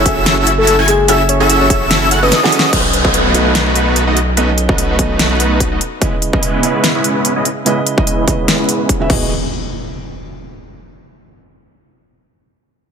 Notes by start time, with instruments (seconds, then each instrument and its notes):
Already playing: sub bass F#1, felt piano F#3 C#4 G#4 A4 E5
0.04 felt piano F#3 C#4 A4 G#5, supersaw synth C#4 E4 F#4 A4 E5, digital synth lead E6, kick, closed hi-hat
0.08 felt piano E5
0.26 snare, closed hi-hat
0.38 supersaw synth C#4 E4 F#4 A4 E5, digital synth lead E6
0.47 closed hi-hat
0.58 soft synth lead A4
0.67 closed hi-hat
0.79 supersaw synth C#4 E4 F#4 A4 G#5, digital synth lead G#6
0.88 soft synth lead G#4, closed hi-hat
1.07 felt piano F#3 C#4 G#4 A4 E5, supersaw synth C#4 E4 F#4 A4 E5, digital synth lead E6, closed hi-hat
1.29 soft synth lead C#5, closed hi-hat
1.39 felt piano F#3 C#4 G#4 A4 E5, supersaw synth C#4 E4 F#4 A4 E5, digital synth lead E6
1.50 closed hi-hat
1.61 soft synth lead C#5
1.68 felt piano F#3 C#4 G#4 A4, digital synth lead E6, kick, closed hi-hat
1.72 felt piano E5
1.91 snare, closed hi-hat
2.02 supersaw synth C#4 E4 F#4 A4 E5, digital synth lead E6
2.11 supersaw synth C#4 E4 F#4 A4 F#5, digital synth lead F#6, closed hi-hat
2.22 supersaw synth C#4 E4 F#4 A4 D#5, soft synth lead B4, digital synth lead D#6
2.32 snare, closed hi-hat
2.42 felt piano F#3 C#4 G#4 A4 F#5, supersaw synth C#4 E4 F#4 A4 D#5, digital synth lead D#6, snare
2.52 closed hi-hat
2.59 snare
2.72 sub bass B1, felt piano B2 F#3 C#4 A4 D#5, supersaw synth A3 B3 D#4 F#4 B4, kick, closed hi-hat, crash, downlifter
2.93 closed hi-hat
3.04 felt piano B2 F#3 C#4 A4 D#5, supersaw synth A3 B3 D#4 F#4 B4, kick
3.14 closed hi-hat
3.32 felt piano B2 F#3 C#4 A4 D#5, supersaw synth A3 B3 D#4 F#4 B4, closed hi-hat
3.55 snare, closed hi-hat
3.66 supersaw synth A3 B3 D#4 F#4 B4
3.75 closed hi-hat
3.96 closed hi-hat
4.07 supersaw synth A3 B3 D#4 F#4 D#5
4.17 closed hi-hat
4.36 felt piano B2 F#3 C#4 A4 D#5, supersaw synth A3 B3 D#4 F#4 B4, closed hi-hat
4.58 closed hi-hat
4.68 felt piano B2 F#3 C#4 A4 D#5, supersaw synth A3 B3 D#4 F#4 B4, kick
4.78 closed hi-hat
4.97 felt piano B2 F#3 C#4 A4, supersaw synth A3 B3 D#4 F#4 B4, kick, closed hi-hat
5.01 felt piano D#5
5.19 snare, closed hi-hat
5.31 supersaw synth A3 B3 D#4 F#4 B4
5.40 closed hi-hat
5.60 kick, closed hi-hat
5.72 supersaw synth A3 B3 D#4 F#4 D#5
5.81 closed hi-hat
6.00 felt piano C#3 G#3 E4 B4 D#5, supersaw synth G#3 B3 C#4 E4 B4, kick, closed hi-hat
6.22 closed hi-hat
6.32 felt piano C#3 G#3 E4 B4 D#5, supersaw synth G#3 B3 C#4 E4 B4, kick
6.43 closed hi-hat
6.61 felt piano C#3 G#3 E4 B4 D#5, supersaw synth G#3 B3 C#4 E4 B4, closed hi-hat
6.84 snare, closed hi-hat
6.95 supersaw synth G#3 B3 C#4 E4 B4
7.04 closed hi-hat
7.25 closed hi-hat
7.36 supersaw synth G#3 B3 C#4 E4 D#5
7.45 closed hi-hat
7.65 felt piano C#3 G#3 E4 B4 D#5, supersaw synth G#3 B3 C#4 E4 B4, closed hi-hat
7.87 closed hi-hat
7.97 felt piano C#3 G#3 E4 B4 D#5, supersaw synth G#3 B3 C#4 E4 B4, kick
8.07 closed hi-hat
8.26 felt piano C#3 G#3 E4 B4, supersaw synth B3 B4, kick, closed hi-hat
8.30 felt piano D#5
8.48 snare, closed hi-hat
8.59 supersaw synth G#3 B3 C#4 E4 B4
8.69 closed hi-hat
8.89 kick, closed hi-hat
8.99 felt piano C#3 G#3 E4 B4 E5, supersaw synth G#3 B3 C#4 E4 D#5
9.07 sub bass E1, felt piano E3 B3 F#4, supersaw synth B3 D#4 E4 G#4 D#5, kick, crash, impact
9.11 felt piano G#4 D#5